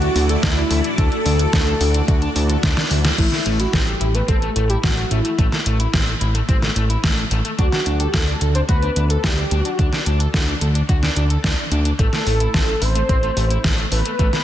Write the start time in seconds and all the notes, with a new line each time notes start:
Already playing: A3 E4 F#4 D5
0.02 D4, closed hi-hat
0.15 D2 D4, open hi-hat
0.29 A4, closed hi-hat
0.43 D2 D4 E4, kick, snare, closed hi-hat
0.57 D4, closed hi-hat
0.70 D2 D4, open hi-hat
0.84 D4, closed hi-hat
0.98 D2 D4 A4, kick, closed hi-hat
1.12 D4, closed hi-hat
1.26 D2 D4, open hi-hat
1.39 A4, closed hi-hat
1.53 D2 F#4, kick, snare, closed hi-hat
1.67 D4, closed hi-hat
1.81 D2 A4, open hi-hat
1.94 D4, closed hi-hat
2.08 D2 F#4, kick, closed hi-hat
2.22 D4, closed hi-hat
2.36 D2 D4, open hi-hat
2.49 A4, closed hi-hat
2.63 D2 D4, kick, snare, closed hi-hat
2.77 D4, snare, closed hi-hat
2.91 D2 D4, open hi-hat
3.04 D4, snare, closed hi-hat
3.18 A1 A3 E4, kick, closed hi-hat, crash
3.32 A3, snare, closed hi-hat
3.46 A1 A3, closed hi-hat
3.59 E4 F#4, closed hi-hat
3.73 A1 C4 G4, kick, snare, closed hi-hat
3.87 A3, closed hi-hat
4.01 A1 E4, closed hi-hat
4.15 A3 B4, closed hi-hat
4.28 A1 C4 A4, kick, closed hi-hat
4.42 A3, closed hi-hat
4.56 A1 A3, closed hi-hat
4.70 E4 G4, closed hi-hat
4.83 A1 A3 F#4, kick, snare, closed hi-hat
4.97 A3, closed hi-hat
5.11 A1 A3 E4, closed hi-hat
5.25 A3, closed hi-hat
5.38 A1 A3, kick, closed hi-hat
5.52 A3, snare, closed hi-hat
5.66 A1 A3, closed hi-hat
5.80 E4, closed hi-hat
5.93 A1 C4, kick, snare, closed hi-hat
6.07 A3, closed hi-hat
6.21 A1 E4, closed hi-hat
6.35 A3, closed hi-hat
6.49 A1 C4, kick, closed hi-hat
6.62 A3, snare, closed hi-hat
6.76 A1 A3, closed hi-hat
6.90 E4, closed hi-hat
7.04 A1 A3, kick, snare, closed hi-hat
7.17 A3, closed hi-hat
7.31 A1 A3, closed hi-hat
7.45 A3, closed hi-hat
7.59 D2 D4 F#4, kick, closed hi-hat
7.72 D4, snare, closed hi-hat
7.86 D2 D4, closed hi-hat
8.00 G4 A4, closed hi-hat
8.14 D2 F#4 A4, kick, snare, closed hi-hat
8.27 D4, closed hi-hat
8.41 D2 A4, closed hi-hat
8.55 D4 C5, closed hi-hat
8.69 D2 F#4 B4, kick, closed hi-hat
8.82 D4, closed hi-hat
8.96 D2 D4, closed hi-hat
9.10 A4, closed hi-hat
9.24 D2 D4 G4, kick, snare, closed hi-hat
9.38 D4, closed hi-hat
9.51 D2 D4 F#4, closed hi-hat
9.65 D4, closed hi-hat
9.79 D2 D4, kick, closed hi-hat
9.93 D4, snare, closed hi-hat
10.06 D2 D4, closed hi-hat
10.20 A4, closed hi-hat
10.34 D2 F#4, kick, snare, closed hi-hat
10.48 D4, closed hi-hat
10.61 D2 A4, closed hi-hat
10.75 D4, closed hi-hat
10.89 D2 F#4, kick, closed hi-hat
11.03 D4, snare, closed hi-hat
11.16 D2 D4, closed hi-hat
11.30 A4, closed hi-hat
11.44 D2 D4, kick, snare, closed hi-hat
11.58 D4, closed hi-hat
11.71 D2 D4, closed hi-hat
11.85 D4, closed hi-hat
11.99 A1 A3 A4, kick, closed hi-hat
12.13 A3, snare, closed hi-hat
12.26 A1 A3, open hi-hat
12.40 E4, closed hi-hat
12.54 A1 C4, kick, snare, closed hi-hat
12.68 A3, closed hi-hat
12.82 A1 E4 C5, open hi-hat
12.95 A3, closed hi-hat
13.09 A1 C4, kick, closed hi-hat
13.23 A3, closed hi-hat
13.37 A1 A3, open hi-hat
13.50 E4, closed hi-hat
13.64 A1 A3, kick, snare, closed hi-hat
13.78 A3, closed hi-hat
13.92 A1 A3 B4, open hi-hat
14.05 A3, closed hi-hat
14.19 A1 A3, kick, closed hi-hat
14.33 A3, snare, closed hi-hat